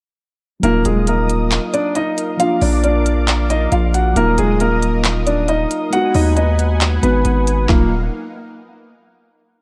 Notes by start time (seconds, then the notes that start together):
0.60 D#1 F#3 A#3 D#4 A#4 D#5 F5 D#6, closed hi-hat
0.64 A#3 F4
0.85 D#1 G#3 G#4, closed hi-hat
1.07 A#3 A#4, closed hi-hat
1.30 closed hi-hat
1.52 clap, closed hi-hat
1.74 D4 D5, closed hi-hat
1.95 D#4 D#5, closed hi-hat
2.18 closed hi-hat
2.37 F3 A#3 D4 F4 D5 F5 D6, closed hi-hat
2.43 F4
2.61 A#1 D4 D5, open hi-hat
2.84 D4 D5, closed hi-hat
3.06 closed hi-hat
3.28 clap, closed hi-hat
3.50 D#4 D#5, closed hi-hat
3.72 A#1 F4 F5, closed hi-hat
3.94 F#4 F#5, closed hi-hat
4.13 D#1 F#3 A#3 D#4 A#4 D#5 D#6, closed hi-hat
4.19 F4
4.38 D#1 G#3 G#4, closed hi-hat
4.60 A#3 A#4, closed hi-hat
4.82 closed hi-hat
5.04 clap, closed hi-hat
5.27 D4 D5, closed hi-hat
5.48 D#4 D#5, closed hi-hat
5.71 closed hi-hat
5.90 G#3 B3 D#4 F#4 B4 F#5 G#5, closed hi-hat
5.96 F#4
6.14 D#2 D#4 D#5, open hi-hat
6.37 D#4 D#5, closed hi-hat
6.59 closed hi-hat
6.81 clap, closed hi-hat
7.01 G#1 G#3 B3 D#4 F#4 B4, closed hi-hat
7.25 G#1, closed hi-hat
7.47 closed hi-hat
7.69 D#1 F#3 A#3 D#4 F4 A#4 F5 F#5, kick, clap